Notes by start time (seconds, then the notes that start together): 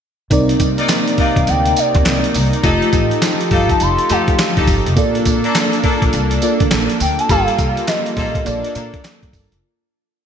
0.30 C2 C3 A#3 C4 D#4 A#4 D5, kick, closed hi-hat, tambourine
0.49 closed hi-hat
0.60 C2, kick, closed hi-hat, tambourine
0.78 D#4 A#4 D5, closed hi-hat
0.89 snare, clap, closed hi-hat, tambourine
1.07 closed hi-hat
1.18 D#4 A#4 D5 F5, muted upright bass stroke, kick, open hi-hat
1.36 C2, kick, closed hi-hat
1.47 D2 G5, closed hi-hat, tambourine
1.66 closed hi-hat
1.76 D5, closed hi-hat, tambourine
1.95 D#2, kick, closed hi-hat
2.05 C2, snare, clap, closed hi-hat, tambourine
2.24 closed hi-hat
2.34 C2, open hi-hat, tambourine
2.53 closed hi-hat
2.63 F1 F3 A3 D#4 F4 G4 A4 D#5, kick, closed hi-hat, tambourine
2.82 closed hi-hat
2.93 A1, kick, closed hi-hat, tambourine
3.11 closed hi-hat
3.22 snare, clap, closed hi-hat, tambourine
3.41 closed hi-hat
3.51 G1 D#4 G4 A4 F5, kick, open hi-hat
3.69 A5, kick, closed hi-hat
3.80 F1 C6, closed hi-hat, tambourine
3.98 closed hi-hat
4.09 F2 A3 D#4 F4 G4 A4 D#5 F5, closed hi-hat, tambourine
4.28 kick, closed hi-hat
4.39 snare, clap, closed hi-hat, tambourine
4.57 D2 D#4 G4 A4, kick, closed hi-hat
4.67 G1, kick, open hi-hat, tambourine
4.86 F1, closed hi-hat
4.96 A#1 A#3 D4 F4 A4 D5, kick, closed hi-hat, tambourine
5.15 closed hi-hat
5.25 A#1, kick, closed hi-hat, tambourine
5.44 A#3 D4 A4, closed hi-hat
5.55 snare, clap, closed hi-hat, tambourine
5.73 closed hi-hat
5.84 A#3 D4 A4, muted upright bass stroke, kick, open hi-hat
6.02 A#1, kick, closed hi-hat
6.13 C2, closed hi-hat, tambourine
6.31 closed hi-hat
6.42 A#3 F4 A4 D5, closed hi-hat, tambourine
6.60 D2, kick, closed hi-hat
6.71 A#1, snare, clap, closed hi-hat, tambourine
6.90 closed hi-hat
7.00 D2 G5, open hi-hat, tambourine
7.19 A5, closed hi-hat
7.29 G1 G3 A#3 F4 G4 A4 F5, kick, closed hi-hat, tambourine
7.48 closed hi-hat
7.59 C2, kick, closed hi-hat, tambourine
7.77 closed hi-hat
7.88 D#5, snare, clap, closed hi-hat, tambourine
8.06 closed hi-hat
8.17 A#1 A#3 F4 A4, kick, snare, open hi-hat
8.35 kick, closed hi-hat
8.45 A#1 A#3 D4 F4 A4 D5, closed hi-hat, tambourine
8.64 closed hi-hat
8.75 A#2 A#3 D4 A4, closed hi-hat, tambourine
8.94 kick, closed hi-hat
9.04 snare, clap, closed hi-hat, tambourine
9.23 G2, kick, closed hi-hat
9.33 G1, kick, open hi-hat, tambourine
9.52 F1, closed hi-hat